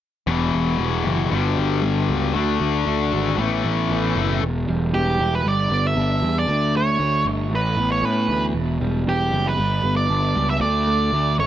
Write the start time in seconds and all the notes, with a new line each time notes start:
0.27 E1 E2 B2 E3 G3 B3 G4
0.53 E1 E3 G3 B3 G4
0.78 E1 E3 G3 B3 G4
1.04 F#1 E2 B2 E3 G3 B3 G4
1.30 G1 G2 D3 G3 B3 D4 F#4
1.56 G1 D4 F#4
1.82 G1 G3 B3 D4 F#4
2.07 C#2 B3 D4 F#4
2.33 D2 D3 A3 D4 F#4
2.59 D2 A3 D4 F#4
2.85 D2 D3 A3 D4 F#4
3.11 G#1 D3 A3 D4 F#4
3.37 A1 A2 E3 A3 B3 C#4 E4
3.63 A1 B3 C#4 E4
3.89 A1 A2 E3 B3 C#4 E4
4.15 F#1 B3 C#4 E4
4.42 E1 E2
4.68 E1 G3
4.94 E1 E3 G4
5.20 E1 G3
5.35 B4
5.45 G1 G3 D5
5.70 G1 B3
5.87 E5
5.96 G1 D4
6.22 E2 G3
6.39 D5
6.48 D2 D3
6.74 A3 C#5
6.99 D2 D3
7.25 G1 A3
7.52 A1 A2 B4
7.77 A1 B3
7.92 C#5
8.03 A2 C#4 B4
8.29 D2 E3
8.55 E1 E2
8.80 E1 G3
9.06 E1 E3 G4
9.32 F#1 G3
9.47 B4
9.58 G1 G3
9.83 G1 B3
9.97 D5
10.09 G1 D4
10.35 C#2 G3
10.50 E5
10.61 D2 D3 D5
10.87 A3
11.13 D2 D3
11.39 G#1 A3 C#5